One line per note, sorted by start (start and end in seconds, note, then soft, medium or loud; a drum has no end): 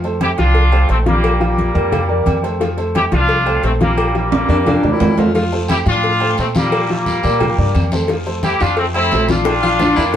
0.00 0.32 F2 medium
0.00 high conga soft
0.00 low agogo medium
0.04 0.32 A3 medium
0.04 0.32 A4 medium
0.04 0.33 C5 medium
0.21 0.30 E4 medium
0.21 0.29 G4 loud
0.21 cowbell medium
0.21 high conga loud
0.21 low agogo loud
0.38 0.86 C2 loud
0.38 0.66 F3 medium
0.38 0.87 D4 medium
0.38 0.66 F4 medium
0.38 0.86 F4 loud
0.38 0.67 F5 medium
0.38 cowbell medium
0.38 high conga soft
0.38 low agogo medium
0.55 cowbell loud
0.55 high conga soft
0.72 0.86 A3 medium
0.72 0.86 A4 medium
0.72 0.87 C5 medium
0.72 high conga soft
0.72 low agogo loud
0.89 1.70 A#1 medium
0.89 1.03 A3 medium
0.89 0.98 A3 medium
0.89 0.98 C4 medium
0.89 1.03 A4 medium
0.89 1.04 C5 medium
0.89 cowbell medium
0.89 high conga soft
0.89 low agogo medium
1.06 1.34 F3 medium
1.06 1.39 G3 medium
1.06 1.39 A#3 loud
1.06 1.34 F4 medium
1.06 1.35 F5 medium
1.06 cowbell medium
1.06 high conga medium
1.24 cowbell loud
1.24 high conga soft
1.24 low agogo loud
1.40 1.69 F3 medium
1.40 2.40 G3 medium
1.40 2.40 A#3 medium
1.40 1.69 F4 medium
1.40 1.69 F5 medium
1.40 high conga soft
1.40 low agogo medium
1.58 cowbell medium
1.58 high conga medium
1.74 2.23 F2 loud
1.74 1.89 A#3 medium
1.74 1.89 A#4 medium
1.74 1.89 D5 medium
1.74 high conga soft
1.74 low agogo medium
1.92 2.06 F3 medium
1.92 2.06 F4 medium
1.92 2.06 F5 medium
1.92 cowbell loud
1.92 high conga soft
1.92 low conga medium
1.92 low agogo loud
2.09 2.37 A#3 medium
2.09 2.37 A#4 medium
2.09 2.37 D5 medium
2.09 high conga soft
2.26 3.07 F2 medium
2.26 cowbell medium
2.26 high conga medium
2.26 low agogo loud
2.43 2.57 A3 medium
2.43 2.58 A4 medium
2.43 2.58 C5 medium
2.43 cowbell medium
2.43 low agogo medium
2.60 2.75 F3 medium
2.60 2.75 F4 medium
2.60 2.75 F5 medium
2.60 cowbell loud
2.60 high conga soft
2.60 low agogo medium
2.77 3.06 A3 medium
2.77 3.06 A4 medium
2.77 3.06 C5 medium
2.77 high conga soft
2.77 low agogo medium
2.95 3.04 E4 medium
2.95 3.03 G4 loud
2.95 cowbell medium
2.95 high conga loud
2.95 low agogo loud
3.12 3.60 C2 loud
3.12 3.40 F3 medium
3.12 3.60 D4 medium
3.12 3.60 F4 loud
3.12 3.40 F4 medium
3.12 3.41 F5 medium
3.12 cowbell medium
3.12 high conga soft
3.12 low agogo medium
3.29 cowbell loud
3.29 high conga soft
3.46 3.60 A3 medium
3.46 3.60 A4 medium
3.46 3.61 C5 medium
3.46 high conga soft
3.46 low agogo loud
3.63 4.43 A#1 medium
3.63 3.78 A3 medium
3.63 3.72 A3 medium
3.63 3.72 C4 medium
3.63 3.78 A4 medium
3.63 3.78 C5 medium
3.63 cowbell medium
3.63 high conga soft
3.63 low agogo medium
3.80 4.09 F3 medium
3.80 4.13 G3 medium
3.80 4.13 A#3 medium
3.80 4.09 F4 medium
3.80 4.09 F5 medium
3.80 cowbell medium
3.80 high conga medium
3.98 cowbell loud
3.98 high conga soft
3.98 low agogo loud
4.15 4.43 F3 medium
4.15 5.15 G3 medium
4.15 5.14 A#3 medium
4.15 4.43 F4 medium
4.15 4.43 F5 medium
4.15 high conga soft
4.15 low agogo medium
4.32 cowbell medium
4.32 high conga medium
4.32 high timbale medium
4.49 4.81 F2 medium
4.49 4.63 A#3 medium
4.49 4.57 D4 medium
4.49 4.63 A#4 medium
4.49 4.63 D5 medium
4.49 high conga soft
4.49 high timbale medium
4.49 low agogo medium
4.66 4.80 F3 medium
4.66 4.93 D4 medium
4.66 4.80 F4 medium
4.66 4.81 F5 medium
4.66 cowbell loud
4.66 high conga soft
4.66 low conga medium
4.66 high timbale medium
4.66 low agogo loud
4.83 5.00 E2 medium
4.83 5.11 A#3 medium
4.83 5.11 A#4 medium
4.83 5.12 D5 medium
4.83 high conga soft
4.83 low conga medium
4.83 low timbale medium
4.92 5.20 E4 loud
5.00 5.81 F2 medium
5.00 cowbell medium
5.00 high conga medium
5.00 low timbale loud
5.00 low agogo loud
5.17 5.32 A3 medium
5.17 5.35 F4 loud
5.17 5.32 A4 medium
5.17 5.32 C5 medium
5.17 cowbell medium
5.17 high conga medium
5.17 low timbale loud
5.17 low agogo medium
5.35 5.49 F3 medium
5.35 5.49 F4 medium
5.35 5.59 F4 medium
5.35 5.49 F5 medium
5.35 cowbell loud
5.35 high conga soft
5.35 low agogo medium
5.35 long guiro medium
5.52 5.80 A3 medium
5.52 5.80 A4 medium
5.52 5.81 C5 medium
5.52 high conga soft
5.52 low agogo medium
5.68 5.78 E4 medium
5.68 5.78 G4 loud
5.68 cowbell medium
5.68 high conga medium
5.68 low agogo loud
5.68 short guiro medium
5.86 6.34 A2 loud
5.86 6.14 F3 medium
5.86 6.35 D4 medium
5.86 6.15 F4 medium
5.86 6.35 F4 loud
5.86 6.15 F5 medium
5.86 cowbell medium
5.86 low agogo medium
5.86 short guiro medium
6.03 cowbell loud
6.03 high conga soft
6.03 long guiro medium
6.20 6.35 A3 medium
6.20 6.35 A4 medium
6.20 6.35 C5 medium
6.20 high conga soft
6.20 low agogo loud
6.37 7.18 A#2 medium
6.37 6.53 A3 medium
6.37 6.47 A3 medium
6.37 6.47 C4 medium
6.37 6.53 A4 medium
6.37 6.53 C5 medium
6.37 cowbell medium
6.37 high conga soft
6.37 low agogo medium
6.37 short guiro medium
6.55 6.83 F3 medium
6.55 6.88 G3 medium
6.55 6.87 A#3 loud
6.55 6.83 F4 medium
6.55 6.83 F5 medium
6.55 cowbell medium
6.55 high conga medium
6.55 short guiro medium
6.72 cowbell loud
6.72 high conga soft
6.72 low agogo loud
6.72 long guiro medium
6.89 7.17 F3 medium
6.89 7.89 G3 medium
6.89 7.89 A#3 medium
6.89 7.18 F4 medium
6.89 7.18 F5 medium
6.89 high conga soft
6.89 low agogo medium
7.06 cowbell medium
7.06 high conga medium
7.06 short guiro medium
7.23 7.56 A#2 medium
7.23 7.38 A#3 medium
7.23 7.38 A#4 medium
7.23 7.38 D5 medium
7.23 high conga soft
7.23 low agogo medium
7.23 short guiro medium
7.40 7.55 F3 medium
7.40 7.55 F4 medium
7.40 7.55 F5 medium
7.40 cowbell loud
7.40 high conga soft
7.40 low conga medium
7.40 low agogo loud
7.40 long guiro medium
7.58 7.74 G2 medium
7.58 7.86 A#3 medium
7.58 7.87 A#4 medium
7.58 7.86 D5 medium
7.58 high conga soft
7.58 low conga medium
7.75 8.55 F2 medium
7.75 cowbell medium
7.75 high conga medium
7.75 low agogo loud
7.75 short guiro medium
7.92 8.06 A3 medium
7.92 8.06 A4 medium
7.92 8.07 C5 medium
7.92 cowbell medium
7.92 high conga medium
7.92 low agogo medium
7.92 short guiro medium
8.08 8.23 F3 medium
8.08 8.24 F4 medium
8.08 8.24 F5 medium
8.08 cowbell loud
8.08 high conga soft
8.08 low agogo medium
8.08 long guiro medium
8.26 8.54 A3 medium
8.26 8.54 A4 medium
8.26 8.55 C5 medium
8.26 high conga soft
8.26 low agogo medium
8.43 8.60 E4 medium
8.43 8.60 G4 loud
8.43 cowbell medium
8.43 high conga medium
8.43 low agogo loud
8.43 short guiro medium
8.60 9.09 F2 medium
8.60 8.89 F3 medium
8.60 8.78 D4 medium
8.60 8.78 F4 loud
8.60 8.89 F4 medium
8.60 8.89 F5 medium
8.60 cowbell medium
8.60 high conga soft
8.60 low agogo medium
8.60 short guiro medium
8.77 8.87 A3 medium
8.77 8.86 C4 medium
8.77 cowbell loud
8.77 high conga soft
8.77 long guiro medium
8.94 9.09 A3 medium
8.94 9.27 C4 medium
8.94 9.26 E4 loud
8.94 9.09 A4 medium
8.94 9.09 C5 medium
8.94 high conga soft
8.94 low agogo loud
9.11 9.92 A#1 medium
9.11 9.26 A3 medium
9.11 9.26 A4 medium
9.11 9.26 C5 medium
9.11 cowbell medium
9.11 high conga soft
9.11 low timbale medium
9.11 low agogo medium
9.11 short guiro medium
9.28 9.57 F3 medium
9.28 10.16 D4 medium
9.28 10.16 F4 loud
9.28 9.58 F4 medium
9.28 9.58 F5 medium
9.28 cowbell medium
9.28 high conga medium
9.28 short guiro medium
9.45 cowbell loud
9.45 high bongo loud
9.45 low agogo loud
9.45 long guiro medium
9.63 9.91 F3 medium
9.63 9.71 F4 medium
9.63 9.91 F4 medium
9.63 9.91 F5 medium
9.63 high conga soft
9.63 low agogo medium
9.79 9.96 D4 loud
9.79 cowbell medium
9.79 low bongo medium
9.79 high conga medium
9.79 short guiro medium
9.96 10.16 F2 medium
9.96 10.11 A#3 medium
9.96 10.04 E4 loud
9.96 10.11 A#4 medium
9.96 10.12 D5 medium
9.96 high conga soft
9.96 low agogo medium
9.96 short guiro medium
10.13 long guiro medium